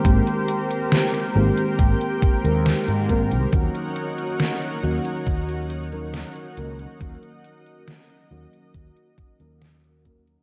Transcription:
0.00 0.04 D#3 medium
0.00 1.30 D#3 medium
0.00 0.05 G#3 medium
0.00 0.05 A#3 medium
0.00 0.06 C4 medium
0.00 3.49 G4 medium
0.00 2.45 A#4 medium
0.00 10.43 A#4 medium
0.00 3.49 C5 medium
0.05 0.19 G#1 medium
0.05 1.30 G#3 medium
0.05 1.30 A#3 medium
0.05 1.31 C4 medium
0.05 1.31 G4 medium
0.05 3.50 G5 medium
0.05 kick loud
0.05 closed hi-hat medium
0.27 closed hi-hat soft
0.48 closed hi-hat medium
0.71 closed hi-hat soft
0.92 snare loud
0.92 closed hi-hat medium
1.14 closed hi-hat soft
1.35 1.49 G#1 medium
1.35 2.17 D#3 medium
1.35 2.17 G#3 medium
1.35 2.17 A#3 medium
1.35 2.18 C4 medium
1.35 2.18 G4 loud
1.57 closed hi-hat soft
1.79 1.93 G#1 medium
1.79 kick loud
1.79 closed hi-hat medium
2.01 closed hi-hat soft
2.22 kick loud
2.22 closed hi-hat medium
2.44 2.72 D#2 medium
2.44 3.04 D#3 medium
2.44 3.04 G#3 medium
2.44 3.04 A#3 medium
2.44 3.05 C4 medium
2.44 3.05 A#4 medium
2.44 closed hi-hat soft
2.66 snare loud
2.66 closed hi-hat medium
2.88 3.33 G#2 medium
2.88 closed hi-hat soft
3.09 3.47 D#3 medium
3.09 3.48 G#3 medium
3.09 3.48 A#3 medium
3.09 3.48 C4 medium
3.09 3.48 A#4 medium
3.09 kick medium
3.09 closed hi-hat medium
3.31 3.45 C2 loud
3.31 closed hi-hat soft
3.52 3.67 D#2 medium
3.52 4.78 D#3 medium
3.52 4.78 F#3 medium
3.52 4.78 A#3 medium
3.52 4.79 C#4 medium
3.52 10.43 D#4 medium
3.52 4.79 F#4 medium
3.52 6.97 C#5 medium
3.52 10.43 F#5 medium
3.52 kick loud
3.52 closed hi-hat medium
3.75 closed hi-hat soft
3.96 closed hi-hat medium
4.18 closed hi-hat soft
4.40 snare loud
4.40 closed hi-hat medium
4.62 closed hi-hat soft
4.83 4.97 D#2 medium
4.83 5.65 D#3 medium
4.83 5.65 F#3 medium
4.83 5.65 A#3 medium
4.83 5.65 C#4 medium
4.83 5.66 F#4 loud
5.05 closed hi-hat soft
5.27 6.23 D#2 medium
5.27 kick loud
5.27 closed hi-hat medium
5.49 closed hi-hat soft
5.70 closed hi-hat medium
5.92 6.52 D#3 medium
5.92 6.52 F#3 medium
5.92 6.52 A#3 medium
5.92 6.52 C#4 medium
5.92 6.53 A#4 medium
5.92 closed hi-hat soft
6.14 snare loud
6.14 closed hi-hat medium
6.36 closed hi-hat soft
6.57 6.85 C#2 medium
6.57 6.95 D#3 medium
6.57 6.96 F#3 medium
6.57 6.96 A#3 medium
6.57 6.96 C#4 medium
6.57 6.96 A#4 medium
6.57 closed hi-hat medium
6.79 closed hi-hat soft
6.99 7.15 D#2 medium
6.99 8.25 D#3 medium
6.99 8.26 F#3 medium
6.99 8.26 A#3 medium
6.99 8.26 C#4 medium
6.99 8.27 F#4 medium
6.99 10.43 D#5 medium
6.99 kick loud
6.99 closed hi-hat medium
7.23 closed hi-hat soft
7.44 closed hi-hat medium
7.66 closed hi-hat soft
7.88 snare loud
7.88 closed hi-hat medium
8.10 closed hi-hat soft
8.30 8.45 D#2 medium
8.30 9.13 D#3 medium
8.30 9.13 F#3 medium
8.30 9.13 A#3 medium
8.30 9.13 C#4 medium
8.30 9.13 F#4 medium
8.53 closed hi-hat soft
8.74 8.88 D#2 medium
8.74 kick loud
8.74 closed hi-hat medium
8.97 closed hi-hat soft
9.18 kick loud
9.18 closed hi-hat medium
9.39 10.36 D#2 medium
9.39 10.00 D#3 medium
9.39 10.00 F#3 medium
9.39 10.00 A#3 medium
9.39 10.00 C#4 medium
9.39 10.00 A#4 medium
9.39 closed hi-hat soft
9.62 snare loud
9.62 closed hi-hat medium
9.84 closed hi-hat soft
10.04 10.43 D#3 medium
10.04 10.43 F#3 medium
10.04 10.43 A#3 medium
10.04 10.43 C#4 medium
10.04 10.43 A#4 medium
10.04 kick medium
10.04 closed hi-hat medium
10.27 closed hi-hat soft

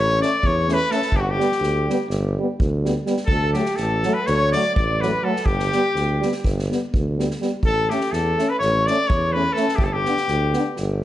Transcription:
0.00 0.21 A1 loud
0.00 0.21 C#5 loud
0.00 0.22 C#5 medium
0.20 0.30 A3 medium
0.20 0.29 C#4 medium
0.20 0.48 D5 medium
0.20 0.47 D5 medium
0.20 snare soft
0.43 0.81 E2 medium
0.43 0.75 C#5 medium
0.43 kick medium
0.68 0.78 A3 medium
0.68 0.77 C#4 medium
0.68 snare soft
0.73 0.93 B4 loud
0.73 0.97 B4 medium
0.90 0.99 A3 medium
0.90 1.00 C#4 medium
0.90 1.18 A4 medium
0.90 snare soft
0.96 1.20 A4 medium
1.02 snare soft
1.12 1.39 G1 medium
1.12 kick medium
1.16 1.22 G4 medium
1.16 1.25 G4 medium
1.20 1.32 F#4 medium
1.20 1.34 F#4 medium
1.30 2.12 G4 medium
1.30 2.13 G4 medium
1.37 1.47 G3 medium
1.37 1.48 B3 medium
1.37 snare soft
1.52 snare soft
1.60 1.88 D2 medium
1.60 snare soft
1.89 1.98 G3 medium
1.89 1.99 B3 medium
1.89 snare soft
2.09 2.37 G1 loud
2.09 snare soft
2.38 2.47 G3 medium
2.38 2.48 B3 medium
2.60 2.98 D2 medium
2.60 kick medium
2.83 2.92 G3 medium
2.83 2.94 B3 medium
2.83 snare soft
3.06 3.15 G3 medium
3.06 3.16 B3 medium
3.06 snare soft
3.17 snare soft
3.26 3.56 D2 medium
3.26 3.52 A4 loud
3.26 3.54 A4 medium
3.26 kick medium
3.53 3.62 F#3 medium
3.53 3.65 A3 medium
3.53 3.78 G4 medium
3.53 snare soft
3.58 3.84 G4 medium
3.66 snare soft
3.76 4.05 A1 medium
3.76 4.15 A4 medium
3.76 snare soft
3.82 4.23 A4 medium
4.03 4.13 F#3 medium
4.03 4.14 A3 medium
4.03 snare soft
4.13 4.28 B4 medium
4.21 4.32 B4 medium
4.26 4.55 D2 loud
4.26 4.52 C#5 loud
4.26 snare soft
4.31 4.56 C#5 loud
4.52 4.64 F#3 medium
4.52 4.62 A3 medium
4.52 4.74 D5 loud
4.52 snare soft
4.57 4.77 D5 medium
4.75 5.16 A1 medium
4.75 5.02 D5 medium
4.75 kick medium
4.81 5.08 D5 medium
5.01 5.10 F#3 medium
5.01 5.11 A3 medium
5.01 5.25 B4 loud
5.01 snare soft
5.06 5.30 B4 medium
5.24 5.33 F#3 medium
5.24 5.34 A3 medium
5.24 5.47 A4 medium
5.28 5.50 A4 medium
5.36 snare soft
5.45 5.72 G1 medium
5.45 6.44 G4 loud
5.45 6.46 G4 medium
5.45 kick medium
5.60 snare soft
5.72 5.82 G3 medium
5.72 5.83 B3 medium
5.72 snare soft
5.95 6.22 D2 medium
5.95 snare soft
6.20 6.30 G3 medium
6.20 6.32 B3 medium
6.20 snare soft
6.32 snare soft
6.44 6.71 G1 medium
6.44 kick medium
6.44 snare soft
6.59 snare soft
6.69 6.78 G3 soft
6.69 6.81 B3 medium
6.69 snare soft
6.94 7.32 D2 medium
6.94 kick medium
7.18 7.27 G3 soft
7.18 7.27 B3 medium
7.18 snare soft
7.31 snare soft
7.41 7.49 G3 medium
7.41 7.50 B3 medium
7.41 snare soft
7.62 7.89 A1 medium
7.62 7.91 A4 loud
7.62 7.95 A4 medium
7.62 kick medium
7.90 7.99 A3 medium
7.90 8.00 C#4 soft
7.90 8.14 G4 medium
7.90 8.16 G4 medium
7.90 snare soft
8.01 snare soft
8.12 8.39 E2 medium
8.12 8.51 A4 medium
8.12 8.52 A4 medium
8.12 snare soft
8.38 8.47 A3 medium
8.38 8.48 C#4 medium
8.38 snare soft
8.49 8.59 B4 medium
8.49 8.61 B4 medium
8.59 8.88 A1 loud
8.59 8.88 C#5 medium
8.59 8.90 C#5 medium
8.59 snare soft
8.87 8.98 A3 medium
8.87 8.98 C#4 medium
8.87 9.09 D5 loud
8.87 9.11 D5 medium
8.87 snare soft
9.08 9.48 E2 medium
9.08 9.34 C#5 medium
9.08 9.39 C#5 medium
9.08 kick medium
9.32 9.43 A3 medium
9.32 9.44 C#4 medium
9.32 9.54 B4 medium
9.37 9.60 B4 medium
9.53 9.65 A3 medium
9.53 9.77 A4 medium
9.57 9.67 C#4 medium
9.57 9.82 A4 medium
9.57 snare soft
9.69 snare soft
9.75 10.05 G1 medium
9.75 9.85 G4 medium
9.75 kick medium
9.81 9.89 G4 medium
9.81 9.94 A4 medium
9.87 9.98 A4 medium
9.93 10.76 G4 loud
9.93 10.78 G4 medium
10.06 10.14 B3 medium
10.06 10.16 D4 medium
10.06 snare soft
10.17 snare soft
10.28 10.55 D2 medium
10.28 snare soft
10.53 10.63 B3 medium
10.53 10.65 D4 medium
10.53 snare soft
10.77 11.04 G1 loud
10.77 snare soft

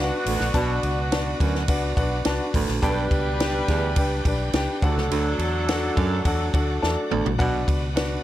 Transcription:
0.00 2.50 B3 medium
0.00 4.78 B3 medium
0.00 0.40 D4 medium
0.00 2.50 D4 medium
0.00 4.78 D4 medium
0.00 0.40 F#4 medium
0.00 2.50 F#4 loud
0.00 2.78 F#4 medium
0.00 0.41 B4 medium
0.00 0.41 D5 medium
0.00 0.44 F#5 medium
0.26 0.38 A1 medium
0.26 0.49 D2 medium
0.26 open hi-hat medium
0.26 ride medium
0.40 0.53 A#1 medium
0.40 snare soft
0.54 0.79 B1 loud
0.54 1.36 B2 medium
0.54 0.77 B2 loud
0.54 0.98 D4 loud
0.54 0.98 F#4 medium
0.54 0.98 B4 loud
0.54 0.98 D5 medium
0.54 0.98 A5 loud
0.54 kick loud
0.54 hi-hat pedal medium
0.54 ride medium
0.83 1.33 C#2 loud
0.83 ride soft
1.12 1.55 D4 medium
1.12 1.55 F#4 medium
1.12 1.55 B4 medium
1.12 1.55 D5 medium
1.12 1.55 A5 medium
1.12 snare loud
1.12 ride medium
1.40 1.65 D2 loud
1.40 1.63 F#2 medium
1.40 kick medium
1.40 ride medium
1.55 snare soft
1.68 1.93 C#2 medium
1.68 1.90 D4 medium
1.68 1.90 F#4 medium
1.68 1.90 B4 medium
1.68 1.90 D5 medium
1.68 1.91 F#5 loud
1.68 kick medium
1.68 ride medium
1.97 2.22 B1 medium
1.97 2.19 D4 medium
1.97 2.19 F#4 medium
1.97 2.19 B4 medium
1.97 2.19 D5 medium
1.97 2.19 F#5 medium
1.97 kick loud
1.97 ride medium
2.25 2.38 C#2 medium
2.25 2.69 D4 medium
2.25 2.69 F#4 medium
2.25 2.69 B4 medium
2.25 2.69 D5 medium
2.25 2.69 A5 medium
2.25 snare loud
2.25 ride medium
2.54 2.66 A1 loud
2.54 2.77 D2 medium
2.54 kick medium
2.54 open hi-hat medium
2.54 ride medium
2.68 2.81 A#1 loud
2.68 snare soft
2.81 3.08 B1 loud
2.81 3.05 G2 loud
2.81 3.64 B2 medium
2.81 4.50 G3 medium
2.81 4.50 D4 medium
2.81 3.26 D4 loud
2.81 4.79 G4 medium
2.81 3.26 G4 loud
2.81 2.89 A4 medium
2.81 4.50 B4 loud
2.81 3.26 D5 loud
2.81 3.26 G5 loud
2.81 kick loud
2.81 hi-hat pedal medium
2.81 ride medium
2.89 3.29 B4 medium
3.11 3.61 C#2 medium
3.11 kick medium
3.11 ride medium
3.40 3.83 D4 medium
3.40 3.83 G4 medium
3.40 3.84 B4 medium
3.40 3.83 D5 medium
3.40 3.83 G5 loud
3.40 snare loud
3.40 ride medium
3.68 3.93 D2 medium
3.68 3.91 E2 medium
3.68 kick medium
3.68 snare soft
3.68 ride medium
3.96 4.21 C#2 loud
3.96 4.19 D4 medium
3.96 4.19 G4 medium
3.96 4.19 B4 medium
3.96 4.19 D5 medium
3.96 4.19 G5 medium
3.96 kick medium
3.96 ride medium
4.25 4.50 B1 medium
4.25 4.48 D4 medium
4.25 4.47 G4 medium
4.25 4.48 B4 medium
4.25 4.48 D5 medium
4.25 4.48 G5 medium
4.25 kick loud
4.25 ride medium
4.53 4.66 C#2 loud
4.53 4.82 D4 medium
4.53 4.83 G4 medium
4.53 4.83 B4 medium
4.53 4.82 D5 medium
4.53 4.83 G5 medium
4.53 snare loud
4.53 ride medium
4.82 4.95 D2 loud
4.82 5.06 D2 medium
4.82 5.64 D3 medium
4.82 7.06 F#3 medium
4.82 7.36 A3 medium
4.82 8.23 D4 medium
4.82 7.06 D4 medium
4.82 5.51 D4 medium
4.82 8.23 F#4 medium
4.82 5.51 F#4 medium
4.82 7.06 A4 medium
4.82 5.51 A4 medium
4.82 5.51 D5 medium
4.82 5.51 F#5 loud
4.82 kick loud
4.82 ride medium
4.96 5.09 C#2 medium
4.96 snare soft
5.10 5.35 D2 loud
5.10 5.34 D2 medium
5.10 ride medium
5.39 5.88 E2 medium
5.39 ride medium
5.68 6.11 D4 medium
5.68 6.12 F#4 medium
5.68 6.12 A4 medium
5.68 6.12 D5 medium
5.68 6.12 F#5 loud
5.68 snare loud
5.68 ride medium
5.96 6.19 F#2 medium
5.96 6.22 F#2 loud
5.96 kick loud
5.96 ride medium
6.25 6.50 E2 medium
6.25 6.47 D4 medium
6.25 6.47 F#4 medium
6.25 6.47 A4 medium
6.25 6.47 D5 medium
6.25 6.47 F#5 loud
6.25 kick loud
6.25 ride medium
6.54 6.78 D2 medium
6.54 6.75 D4 medium
6.54 6.75 F#4 medium
6.54 6.76 A4 medium
6.54 6.76 D5 medium
6.54 6.76 F#5 medium
6.54 kick loud
6.54 ride medium
6.82 6.95 E2 medium
6.82 7.26 D4 medium
6.82 6.89 E4 medium
6.82 7.26 A4 medium
6.82 7.26 D5 medium
6.82 7.26 A5 loud
6.82 snare medium
6.89 7.29 F#4 medium
7.11 7.24 A1 medium
7.11 7.34 D2 medium
7.11 mid tom loud
7.26 7.38 A#1 medium
7.26 floor tom loud
7.38 7.64 B1 loud
7.38 8.20 B2 medium
7.38 7.63 B2 medium
7.38 8.23 B3 medium
7.38 7.82 D4 loud
7.38 7.82 F#4 medium
7.38 7.82 B4 loud
7.38 7.82 D5 loud
7.38 7.82 F#5 loud
7.38 kick loud
7.38 ride medium
7.68 8.17 C#2 medium
7.68 kick medium
7.68 ride medium
7.96 8.23 D4 medium
7.96 8.23 F#4 medium
7.96 8.23 B4 medium
7.96 8.23 D5 medium
7.96 8.23 F#5 medium
7.96 snare loud
7.96 ride medium

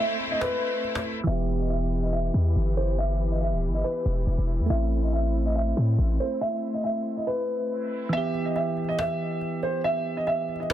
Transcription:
0.00 1.21 A3 medium
0.00 1.24 A3 medium
0.00 1.24 C4 medium
0.00 1.25 C4 medium
0.00 1.23 E4 medium
0.00 1.24 E4 medium
0.00 0.29 E5 medium
0.20 cajon slap soft
0.27 cajon slap soft
0.31 0.40 D#5 medium
0.31 cajon slap soft
0.41 1.23 B4 medium
0.41 cajon slap loud
0.84 cajon slap soft
0.95 cajon slap medium
1.06 cajon slap soft
1.13 cajon slap soft
1.20 4.64 E3 medium
1.20 cajon slap soft
1.27 2.30 E1 loud
1.27 4.66 E3 medium
1.27 4.66 B3 medium
1.27 8.09 E4 medium
1.27 4.66 G4 medium
1.27 4.66 B4 medium
1.27 1.58 E5 loud
1.31 4.68 G4 medium
1.60 1.68 D#5 medium
1.70 2.01 E5 medium
2.03 2.11 D#5 medium
2.13 2.73 E5 medium
2.34 2.55 E2 loud
2.56 3.54 G1 loud
2.77 2.95 C5 medium
2.98 3.29 E5 medium
3.31 3.40 D#5 medium
3.41 3.72 E5 medium
3.52 3.70 D#1 loud
3.68 3.83 G1 loud
3.74 3.82 D#5 medium
3.84 4.66 B4 medium
4.06 4.26 E1 loud
4.27 4.38 E1 loud
4.38 4.61 E1 loud
4.60 4.69 E2 loud
4.66 5.73 A1 loud
4.66 8.07 A3 medium
4.66 8.09 A3 medium
4.66 8.09 C4 medium
4.66 8.09 E4 medium
4.70 8.11 C4 medium
4.70 5.01 E5 loud
5.03 5.11 D#5 medium
5.13 5.44 E5 medium
5.46 5.54 D#5 medium
5.56 6.16 E5 medium
5.77 5.98 A2 loud
5.98 6.19 A1 loud
6.20 6.38 C5 medium
6.41 6.72 E5 loud
6.74 6.82 D#5 medium
6.84 7.15 E5 medium
7.17 7.25 D#5 medium
7.27 8.09 B4 medium
8.09 10.73 E3 medium
8.09 10.73 B3 medium
8.09 8.44 E5 loud
8.09 cajon slap soft
8.17 10.73 G4 medium
8.34 cajon slap soft
8.46 8.54 D#5 medium
8.56 8.87 E5 medium
8.56 cajon slap soft
8.77 cajon slap soft
8.84 cajon slap soft
8.89 8.97 D#5 medium
8.89 cajon slap soft
8.99 9.59 E5 loud
8.99 cajon slap loud
9.41 cajon slap soft
9.63 9.81 C5 medium
9.63 cajon slap soft
9.84 10.15 E5 medium
9.84 cajon slap soft
10.17 10.25 D#5 medium
10.27 10.58 E5 medium
10.27 cajon slap soft
10.48 cajon slap soft
10.56 cajon slap soft
10.60 10.68 D#5 medium
10.60 cajon slap soft
10.70 cajon slap loud

